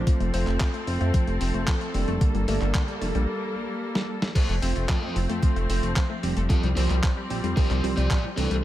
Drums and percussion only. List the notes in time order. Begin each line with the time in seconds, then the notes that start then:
0.07 kick, closed hi-hat
0.20 closed hi-hat
0.34 open hi-hat
0.47 clap, closed hi-hat
0.60 kick, clap, closed hi-hat
0.74 closed hi-hat
0.87 open hi-hat
1.01 closed hi-hat
1.14 kick, closed hi-hat
1.27 closed hi-hat
1.41 open hi-hat
1.54 closed hi-hat
1.68 kick, clap, closed hi-hat
1.81 closed hi-hat
1.94 open hi-hat
2.08 closed hi-hat
2.21 kick, closed hi-hat
2.35 closed hi-hat
2.48 open hi-hat
2.61 clap, closed hi-hat
2.75 kick, clap, closed hi-hat
2.88 closed hi-hat
3.02 open hi-hat
3.15 closed hi-hat
3.95 snare
4.22 snare
4.35 kick, closed hi-hat, crash
4.49 closed hi-hat
4.62 open hi-hat
4.76 closed hi-hat
4.89 kick, clap, closed hi-hat
5.16 open hi-hat
5.29 closed hi-hat
5.43 kick, closed hi-hat
5.56 closed hi-hat
5.70 open hi-hat
5.83 closed hi-hat
5.96 kick, clap, closed hi-hat
6.23 open hi-hat
6.37 closed hi-hat
6.50 kick, closed hi-hat
6.63 closed hi-hat
6.77 open hi-hat
6.90 clap, closed hi-hat
7.03 kick, clap, closed hi-hat
7.30 open hi-hat
7.44 closed hi-hat
7.57 kick, open hi-hat
7.71 clap, closed hi-hat
7.84 open hi-hat
7.97 closed hi-hat
8.11 kick, clap, closed hi-hat
8.38 open hi-hat
8.51 closed hi-hat